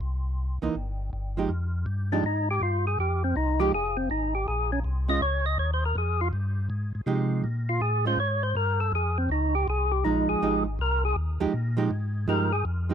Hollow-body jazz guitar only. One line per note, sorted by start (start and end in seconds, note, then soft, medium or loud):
0.62 0.74 E3 medium
0.62 0.74 A#3 medium
0.62 0.74 D#4 medium
1.37 1.49 F3 medium
1.37 1.49 G#3 medium
1.37 1.49 D#4 medium
1.37 1.49 G4 medium
2.12 2.23 F3 medium
2.12 2.23 G#3 medium
2.12 2.24 D#4 medium
2.12 2.24 G4 medium
3.59 3.71 F3 medium
3.59 3.71 G#3 medium
3.59 3.71 D#4 medium
3.59 3.72 G4 medium
5.08 5.20 G#3 medium
5.08 5.20 C#4 medium
5.08 5.20 F4 medium
7.07 7.44 F3 medium
7.07 7.44 G#3 medium
7.07 7.44 D#4 medium
7.07 7.45 G4 medium
8.05 8.17 G#3 medium
8.05 8.17 C#4 medium
8.05 8.18 F4 medium
10.05 10.41 F3 medium
10.05 10.41 G#3 medium
10.05 10.42 D#4 medium
10.42 10.64 F3 medium
10.42 10.64 G#3 medium
10.42 10.64 D#4 medium
10.42 10.64 G4 medium
11.40 11.52 F3 medium
11.40 11.52 G#3 medium
11.40 11.52 D#4 medium
11.40 11.52 G4 medium
11.77 11.89 F3 medium
11.77 11.89 G#3 medium
11.77 11.89 D#4 medium
11.77 11.89 G4 medium
12.28 12.50 F3 medium
12.28 12.50 G#3 medium
12.28 12.50 D#4 medium
12.28 12.50 G4 medium
12.89 12.94 F3 medium
12.89 12.94 G#3 medium
12.89 12.94 D#4 medium
12.89 12.94 G4 medium